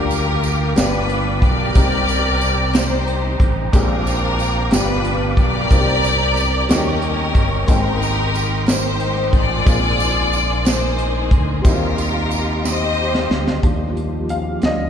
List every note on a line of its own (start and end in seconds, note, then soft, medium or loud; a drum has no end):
0.00 0.73 D2 loud
0.00 0.73 D3 medium
0.00 0.74 G3 medium
0.00 0.76 A#3 medium
0.00 0.75 D4 medium
0.00 0.73 F4 medium
0.00 0.76 F4 medium
0.00 0.74 G4 medium
0.00 0.77 G4 medium
0.00 0.74 A#4 medium
0.00 0.75 A#4 medium
0.00 1.72 F5 medium
0.00 1.73 G5 medium
0.00 1.73 D6 medium
0.11 closed hi-hat medium
0.11 tambourine medium
0.43 closed hi-hat soft
0.43 tambourine medium
0.75 1.39 G1 medium
0.75 1.72 G2 medium
0.75 1.73 G3 medium
0.75 1.75 B3 medium
0.75 1.76 D4 medium
0.75 1.76 F4 medium
0.75 1.76 G4 medium
0.75 snare loud
0.75 closed hi-hat medium
0.75 tambourine medium
0.80 1.73 D4 medium
0.80 1.73 F4 medium
0.80 1.44 B4 loud
1.09 closed hi-hat medium
1.42 1.72 B1 medium
1.42 2.72 G4 medium
1.42 2.72 A#4 medium
1.42 2.76 D5 loud
1.42 kick medium
1.42 closed hi-hat soft
1.74 3.36 C2 loud
1.74 2.71 C3 medium
1.74 3.69 G3 medium
1.74 3.69 A#3 medium
1.74 3.70 C4 medium
1.74 3.70 D#4 medium
1.74 4.69 C5 medium
1.74 5.67 G5 medium
1.74 3.72 A#5 medium
1.74 kick loud
1.74 closed hi-hat medium
1.74 tambourine medium
1.78 3.71 G4 medium
2.09 closed hi-hat medium
2.09 tambourine medium
2.41 closed hi-hat soft
2.41 tambourine soft
2.73 3.70 D#4 medium
2.73 3.70 G4 medium
2.73 3.41 C5 medium
2.73 snare loud
2.73 closed hi-hat medium
2.73 tambourine medium
3.08 closed hi-hat medium
3.40 3.70 A1 medium
3.40 kick medium
3.40 closed hi-hat soft
3.72 4.68 A#1 loud
3.72 4.68 A#2 medium
3.72 4.72 G#3 medium
3.72 4.72 A#3 medium
3.72 4.72 C4 medium
3.72 4.71 D4 medium
3.72 4.70 F4 medium
3.72 4.73 G4 medium
3.72 4.70 F5 medium
3.72 4.70 D6 medium
3.72 kick loud
3.72 closed hi-hat medium
3.72 tambourine soft
3.76 4.70 D4 medium
3.76 4.70 A#4 loud
4.07 closed hi-hat medium
4.07 tambourine medium
4.39 closed hi-hat soft
4.39 tambourine medium
4.71 5.34 G1 medium
4.71 5.67 G2 medium
4.71 5.71 G3 medium
4.71 5.70 B3 medium
4.71 5.71 B3 medium
4.71 5.71 D4 medium
4.71 5.68 D4 medium
4.71 5.71 F4 medium
4.71 5.68 F4 medium
4.71 5.72 G4 medium
4.71 5.39 B4 medium
4.71 5.70 F5 medium
4.71 6.67 D6 medium
4.71 snare loud
4.71 closed hi-hat medium
4.71 tambourine loud
5.05 closed hi-hat medium
5.37 5.68 B1 medium
5.37 6.67 G4 medium
5.37 6.67 A#4 medium
5.37 6.67 D5 loud
5.37 kick medium
5.37 closed hi-hat soft
5.70 6.66 C2 loud
5.70 6.66 C3 medium
5.70 6.67 A#3 medium
5.70 6.70 C4 medium
5.70 6.70 D4 medium
5.70 6.69 D#4 medium
5.70 5.78 F4 medium
5.70 6.69 C5 medium
5.70 6.69 D5 medium
5.70 6.69 A#5 medium
5.70 kick medium
5.70 closed hi-hat medium
5.70 tambourine medium
5.80 6.74 G4 medium
6.04 closed hi-hat medium
6.04 tambourine medium
6.36 closed hi-hat soft
6.36 tambourine medium
6.69 7.32 D#2 medium
6.69 7.65 D#3 medium
6.69 7.68 G3 medium
6.69 7.66 A#3 medium
6.69 7.69 C#4 medium
6.69 7.65 C#4 medium
6.69 7.69 D#4 medium
6.69 6.77 F#4 medium
6.69 7.66 G4 medium
6.69 11.60 A#4 medium
6.69 7.70 A#4 loud
6.69 7.67 D#5 medium
6.69 9.63 G5 medium
6.69 7.67 C#6 medium
6.69 snare loud
6.69 closed hi-hat medium
6.69 tambourine medium
6.77 7.73 G4 medium
7.02 closed hi-hat medium
7.35 7.66 G1 medium
7.35 kick medium
7.35 closed hi-hat soft
7.67 9.30 G#1 loud
7.67 8.64 G#2 medium
7.67 9.62 G#3 medium
7.67 9.62 A#3 medium
7.67 9.63 C4 medium
7.67 9.63 D#4 medium
7.67 13.59 C6 medium
7.67 kick medium
7.67 closed hi-hat medium
7.67 tambourine medium
7.71 8.65 D#4 medium
7.71 8.65 G4 medium
7.71 8.65 A#4 loud
7.71 9.64 G5 medium
8.02 closed hi-hat medium
8.02 tambourine soft
8.34 closed hi-hat soft
8.34 tambourine medium
8.67 9.64 D#4 medium
8.67 9.63 G4 medium
8.67 9.30 C5 medium
8.67 snare loud
8.67 closed hi-hat medium
8.67 tambourine loud
9.00 closed hi-hat medium
9.33 9.64 A1 medium
9.33 10.63 F4 medium
9.33 10.63 G#4 medium
9.33 10.66 D5 loud
9.33 kick medium
9.33 closed hi-hat soft
9.64 11.28 A#1 loud
9.64 10.62 A#2 medium
9.64 11.60 G#3 medium
9.64 11.60 A#3 medium
9.64 11.61 C4 medium
9.64 11.62 D#4 medium
9.64 kick loud
9.64 closed hi-hat medium
9.64 tambourine soft
9.69 11.62 F4 medium
10.00 closed hi-hat medium
10.00 tambourine medium
10.33 closed hi-hat soft
10.33 tambourine medium
10.65 11.62 D#4 medium
10.65 11.63 G#4 medium
10.65 11.33 C5 medium
10.65 snare loud
10.65 closed hi-hat medium
10.65 tambourine medium
10.98 closed hi-hat medium
11.31 11.62 D2 medium
11.31 kick medium
11.31 closed hi-hat soft
11.62 13.26 D#2 loud
11.62 12.60 D#3 medium
11.62 13.58 G3 medium
11.62 13.59 A#3 medium
11.62 13.59 C4 medium
11.62 13.60 D#4 medium
11.62 13.60 G4 medium
11.62 13.61 D#5 medium
11.62 13.61 F5 medium
11.62 kick loud
11.62 closed hi-hat medium
11.62 tambourine medium
11.67 11.72 E4 medium
11.67 12.62 F4 medium
11.67 12.62 G4 medium
11.67 12.62 A#4 medium
11.73 13.64 F4 medium
11.98 closed hi-hat medium
11.98 tambourine medium
12.30 closed hi-hat soft
12.30 tambourine medium
12.65 13.61 G4 medium
12.65 13.61 C5 medium
12.65 13.39 D#5 loud
12.65 snare medium
12.65 tambourine medium
13.15 snare medium
13.31 13.61 D2 medium
13.31 snare medium
13.47 snare medium
13.62 14.59 D#2 medium
13.62 14.58 F3 soft
13.62 14.90 F3 medium
13.62 14.59 G3 soft
13.62 14.90 A#3 medium
13.62 14.59 D4 soft
13.62 14.90 F4 medium
13.62 14.90 G4 medium
13.62 kick medium
13.62 closed hi-hat medium
13.97 closed hi-hat soft
14.29 14.64 F5 medium
14.29 closed hi-hat medium
14.62 14.90 D2 medium
14.62 14.90 D3 soft
14.62 14.90 F3 soft
14.62 14.90 G3 soft
14.62 14.90 D#5 medium
14.62 snare loud
14.62 closed hi-hat medium